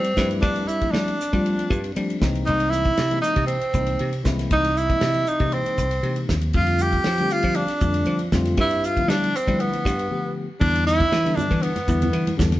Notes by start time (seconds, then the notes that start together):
Already playing: G3 C4
0.04 ride
0.17 G2 F3 G3 A3 C4 E4, kick, snare, hi-hat pedal
0.31 ride
0.42 G2 D4, kick, ride
0.56 ride
0.68 E4, hi-hat pedal
0.81 F3 G3 A3 C4 E4, kick, ride
0.91 G3 D4, snare, ride
1.08 ride
1.21 snare, hi-hat pedal
1.33 F3 G3 A3 C4 F4, kick, ride
1.46 ride
1.59 ride
1.70 G2, kick, hi-hat pedal
1.84 ride
1.96 F3 G3 A3 C4 D4, ride
2.10 ride
2.21 C2 E3 G#3 A#3 C4 D#4, kick, snare, hi-hat pedal
2.35 ride
2.46 C2 D#4, ride
2.60 ride
2.70 E4, hi-hat pedal
2.85 kick, ride
2.97 C3, snare, ride
3.10 E3 G#3 A#3 C4 D#4, ride
3.21 D#4, snare, hi-hat pedal
3.36 C3, kick, ride
3.46 C4, ride
3.61 ride
3.73 C2 E3 G#3 A#3 C4 D#4, kick, hi-hat pedal
3.87 ride
3.99 C3, ride
4.13 ride
4.24 C2 E3 G#3 A#3 C4 E4, kick, snare, hi-hat pedal
4.39 snare, ride
4.51 C2 D#4, kick, ride
4.64 ride
4.77 E4, hi-hat pedal
4.89 E3 G#3 A#3 C4 D#5, kick, ride
5.01 C3, snare, ride
5.14 ride
5.27 D#4, hi-hat pedal
5.39 C3 E3 G#3 A#3 C4 D#4, kick, ride
5.52 C4, ride
5.66 ride
5.78 C2, kick, hi-hat pedal
5.91 ride
6.03 C3 E3 G#3 A#3 C4 D#4, ride
6.16 ride
6.29 D#2, kick, snare, hi-hat pedal
6.41 ride
6.53 F2 D3 G3 A3 C4 F4, kick, ride
6.67 ride
6.78 G4, hi-hat pedal
6.92 kick, ride
7.04 F3, snare, ride
7.18 D3 G3 A3 C4 G4, ride
7.30 F4, hi-hat pedal
7.43 F3, kick, ride
7.55 D4, ride
7.68 snare, ride
7.80 F2 D3 G3 A3 C4, kick, hi-hat pedal
7.85 D4
7.94 ride
8.06 F3, ride
8.19 ride
8.32 F2 D3 G3 A3 C4 F4, kick, snare, hi-hat pedal
8.45 snare, ride
8.57 G2 E4, kick, ride
8.71 ride
8.84 F4, hi-hat pedal
8.97 D3 F3 A3 B3 E4, kick, ride
9.08 G3 D4, snare, ride
9.24 ride
9.36 C4, hi-hat pedal
9.47 D3 F3 G3 A3 B3 E4, kick, ride
9.60 B3, ride
9.73 ride
9.85 G2, kick, hi-hat pedal
9.99 ride
10.10 D3 F3 A3 B3 G4
10.60 E2 D3 E3 G3 B3 D4, kick, crash
10.76 ride
10.87 E4, hi-hat pedal
11.00 kick, ride, high conga
11.12 E3, snare, ride
11.24 D3 E3 G3 B3 D4, ride
11.36 D4, hi-hat pedal, low conga
11.51 E3, kick, ride
11.62 B3, ride
11.76 snare, ride, high conga
11.88 E2 D3 E3 G3 B3 E4, kick, hi-hat pedal
12.02 ride, low conga
12.13 E3, ride
12.27 ride, high conga
12.38 E2 D3 E3 G3 B3 D4, kick, snare, hi-hat pedal, low conga
12.52 snare, ride, high conga